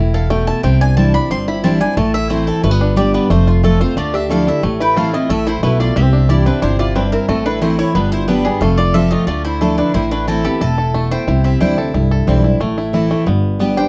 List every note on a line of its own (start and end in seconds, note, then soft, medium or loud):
0.00 0.50 E1 medium
0.00 0.29 A2 medium
0.00 0.47 E4 medium
0.00 0.13 A4 medium
0.14 0.61 A4 medium
0.14 0.30 F5 medium
0.30 0.62 B2 medium
0.30 0.64 A3 medium
0.30 0.47 G5 medium
0.47 0.84 E4 medium
0.47 0.63 A5 loud
0.63 1.16 C2 loud
0.63 1.27 C3 loud
0.63 0.96 C4 medium
0.63 0.80 G5 medium
0.81 1.13 D4 medium
0.81 0.96 G#5 loud
0.97 1.13 E3 medium
0.97 1.14 G3 medium
0.97 1.30 C4 medium
0.97 1.14 D4 medium
0.97 1.13 E4 medium
0.97 1.14 A5 loud
1.14 1.61 D4 medium
1.14 1.30 D4 medium
1.14 1.30 E4 medium
1.14 1.30 B5 loud
1.30 1.83 G1 medium
1.30 1.94 G2 medium
1.30 1.63 C4 medium
1.30 1.47 C6 loud
1.48 1.94 E4 medium
1.48 1.63 B5 medium
1.64 1.80 E3 loud
1.64 1.80 G3 loud
1.64 1.97 C4 medium
1.64 1.81 D4 loud
1.64 1.79 E4 medium
1.64 1.80 A5 medium
1.81 1.97 D4 medium
1.81 1.97 D4 soft
1.81 1.96 E4 medium
1.81 1.97 G#5 loud
1.97 2.50 A1 loud
1.97 2.60 A2 medium
1.97 2.29 A3 medium
1.97 2.14 A5 medium
2.14 2.46 E4 medium
2.14 2.30 E5 loud
2.29 2.62 E3 medium
2.29 2.62 A3 medium
2.29 2.63 A3 medium
2.29 2.62 C4 medium
2.29 2.63 E4 medium
2.29 2.47 C5 medium
2.47 2.64 E4 medium
2.47 2.63 A4 medium
2.64 3.16 G1 loud
2.64 3.27 G2 medium
2.64 2.71 A3 medium
2.64 2.95 B4 medium
2.71 2.97 B3 medium
2.81 3.27 D4 medium
2.96 3.28 G3 medium
2.96 3.29 B3 medium
2.96 3.29 D4 medium
2.96 3.30 G4 medium
2.96 3.29 G4 medium
2.96 3.13 D5 loud
3.14 3.30 B3 medium
3.14 3.30 B4 medium
3.30 3.83 F1 loud
3.30 3.93 F2 medium
3.30 3.63 A3 medium
3.30 3.47 C5 medium
3.47 3.79 F4 medium
3.47 3.63 F4 medium
3.63 3.80 F3 medium
3.63 3.97 A3 medium
3.63 3.80 A3 medium
3.63 3.80 C4 medium
3.63 3.79 F4 medium
3.63 3.80 A4 medium
3.81 3.97 C4 soft
3.81 3.96 F4 medium
3.81 3.97 F4 medium
3.81 3.96 C5 medium
3.96 4.49 D2 medium
3.96 4.60 D3 medium
3.96 4.29 A3 medium
3.96 4.13 F4 medium
3.96 4.14 D5 medium
4.14 4.46 D4 medium
4.14 4.29 G4 medium
4.14 4.30 E5 medium
4.29 4.46 F3 medium
4.29 4.62 A3 medium
4.29 4.47 A3 medium
4.29 4.47 D4 medium
4.29 4.45 E4 medium
4.29 4.46 A4 medium
4.29 4.47 F5 medium
4.47 4.63 D4 medium
4.47 4.63 D4 soft
4.47 4.62 E4 medium
4.47 4.63 G4 medium
4.47 4.63 E5 medium
4.63 5.16 A1 medium
4.63 5.26 A2 loud
4.63 4.95 A3 medium
4.80 5.13 E4 medium
4.80 4.96 B4 medium
4.80 4.97 G5 medium
4.96 5.13 E3 medium
4.96 5.28 A3 medium
4.96 5.13 A3 medium
4.96 5.13 C4 medium
4.96 5.12 E4 medium
4.96 5.12 A4 medium
4.96 5.13 F5 medium
5.13 5.30 C4 soft
5.13 5.29 E4 medium
5.13 5.47 E4 medium
5.13 5.29 F4 medium
5.13 5.29 D#5 medium
5.29 5.58 A1 medium
5.29 5.61 A2 medium
5.29 5.62 A3 medium
5.29 5.46 A4 medium
5.29 5.46 E5 loud
5.47 5.62 E4 medium
5.47 5.80 E4 medium
5.47 5.63 C5 medium
5.63 5.91 B1 medium
5.63 5.95 B2 medium
5.63 5.96 A3 medium
5.63 5.79 E4 medium
5.63 5.80 B4 medium
5.80 5.99 E4 medium
5.80 5.95 F4 medium
5.80 5.96 D5 medium
5.96 6.49 C2 loud
5.96 6.59 C3 medium
5.96 6.03 A#3 medium
5.96 6.27 G4 medium
5.96 6.27 E5 medium
6.03 6.29 C4 medium
6.13 6.59 D4 medium
6.29 6.46 E3 medium
6.29 6.46 G3 medium
6.29 6.46 D4 medium
6.29 6.76 E4 medium
6.29 6.45 E4 medium
6.29 6.45 G4 medium
6.29 6.46 D5 medium
6.46 6.92 C4 medium
6.46 6.61 D4 medium
6.46 6.63 D4 soft
6.46 6.62 E4 medium
6.46 6.62 B4 medium
6.62 7.15 G1 medium
6.62 6.94 C3 medium
6.62 7.09 D4 medium
6.62 6.78 E4 medium
6.62 6.79 C5 medium
6.79 7.11 E4 medium
6.79 6.94 F4 medium
6.79 6.95 D5 medium
6.95 7.27 G2 loud
6.95 7.28 C4 medium
6.95 7.12 D4 medium
6.95 7.12 B4 medium
7.12 7.28 C4 medium
7.12 7.29 E4 medium
7.12 7.28 A#4 medium
7.28 7.81 A1 loud
7.28 7.92 A2 medium
7.28 7.61 A3 medium
7.28 7.45 C4 medium
7.28 7.45 A4 medium
7.46 7.61 D4 medium
7.46 7.78 E4 medium
7.46 7.61 B4 medium
7.61 7.93 E3 medium
7.61 7.95 A3 medium
7.61 7.94 A3 medium
7.61 7.94 C4 medium
7.61 7.78 E4 medium
7.61 7.94 E4 medium
7.61 7.78 C5 medium
7.79 7.95 E4 medium
7.79 7.94 E4 medium
7.79 7.95 C#5 loud
7.95 8.48 G1 loud
7.95 8.59 G2 loud
7.95 8.27 B3 medium
7.95 8.11 D4 medium
7.95 8.11 B4 medium
8.12 8.28 E4 medium
8.12 8.27 C5 loud
8.28 8.44 G3 medium
8.28 8.61 B3 medium
8.28 8.45 B3 medium
8.28 8.45 D4 medium
8.28 8.43 G4 loud
8.28 8.45 B4 medium
8.44 8.61 B3 medium
8.44 8.62 D4 medium
8.44 8.61 G4 medium
8.44 8.61 G#4 medium
8.61 9.14 F1 medium
8.61 9.25 F2 loud
8.61 9.12 A3 medium
8.61 8.78 A4 medium
8.61 8.78 F5 medium
8.78 8.94 F4 medium
8.78 8.94 D5 loud
8.94 9.26 F3 medium
8.94 9.27 A3 medium
8.94 9.27 C4 medium
8.94 9.28 F4 medium
8.94 9.27 F4 loud
8.94 9.11 A4 medium
8.94 9.11 E5 loud
9.11 9.28 A3 medium
9.11 9.27 F4 medium
9.11 9.27 D#5 medium
9.27 9.80 D2 medium
9.27 9.91 D3 medium
9.27 9.60 A3 medium
9.27 9.44 F4 medium
9.27 9.44 D5 medium
9.45 9.94 E4 medium
9.45 9.60 E4 medium
9.45 9.61 C5 medium
9.61 9.93 F3 medium
9.61 9.95 A3 medium
9.61 9.93 A3 medium
9.61 9.76 D4 medium
9.61 9.94 D4 medium
9.61 9.94 E4 medium
9.61 9.77 A4 medium
9.78 9.93 D4 medium
9.78 9.95 D4 medium
9.78 9.94 B4 medium
9.94 10.47 A1 medium
9.94 10.58 A2 loud
9.94 10.10 E4 medium
9.94 10.27 E4 medium
9.94 10.11 C5 medium
10.11 10.58 A3 medium
10.11 10.27 D4 medium
10.11 10.27 B4 medium
10.27 10.44 E3 medium
10.27 10.44 A3 medium
10.27 10.44 C4 medium
10.27 10.45 C4 loud
10.27 10.61 E4 medium
10.27 10.44 E4 medium
10.27 10.44 A4 medium
10.45 10.60 B3 medium
10.45 10.62 C4 soft
10.45 10.60 E4 medium
10.45 10.60 G4 medium
10.45 10.77 A4 medium
10.61 11.14 E1 medium
10.61 10.93 A2 medium
10.61 11.08 C4 medium
10.61 11.11 E4 medium
10.61 11.08 A4 medium
10.78 11.24 A4 medium
10.94 11.26 B2 medium
10.94 11.28 A3 medium
11.11 11.27 E4 medium
11.11 11.42 C5 medium
11.11 11.42 G5 medium
11.27 11.54 C2 loud
11.27 11.91 C3 medium
11.27 11.60 E4 medium
11.44 11.91 C4 medium
11.44 11.60 G4 medium
11.44 11.60 E5 medium
11.60 11.89 D2 medium
11.60 11.77 E3 medium
11.60 11.77 G3 medium
11.60 11.78 D4 medium
11.60 11.93 E4 medium
11.60 11.76 E4 loud
11.60 11.92 C5 medium
11.60 11.92 G5 medium
11.78 11.94 D4 soft
11.78 11.93 E4 medium
11.78 12.10 A4 medium
11.94 12.22 C2 medium
11.94 12.58 G2 medium
11.94 12.41 E4 medium
12.11 12.58 A4 medium
12.27 12.55 B1 loud
12.27 12.44 E3 medium
12.27 12.44 G3 medium
12.27 12.60 C4 medium
12.27 12.44 D4 medium
12.27 12.43 E4 loud
12.44 12.61 D4 soft
12.44 12.60 E4 medium
12.44 12.61 E4 medium
12.60 13.13 A1 loud
12.60 13.24 A2 medium
12.60 13.08 A3 medium
12.78 12.93 E4 medium
12.93 13.25 E3 medium
12.93 13.26 A3 medium
12.93 13.26 C4 medium
12.93 13.27 E4 medium
12.93 13.26 E4 medium
13.11 13.27 A3 medium
13.26 13.79 G1 loud
13.26 13.88 G2 loud
13.26 13.59 B3 medium
13.59 13.76 G3 medium
13.59 13.88 B3 medium
13.59 13.77 B3 medium
13.59 13.77 D4 loud
13.59 13.75 G4 loud
13.77 13.88 D4 medium
13.77 13.88 D4 soft
13.77 13.88 G4 medium
13.77 13.88 C5 medium
13.77 13.88 G5 medium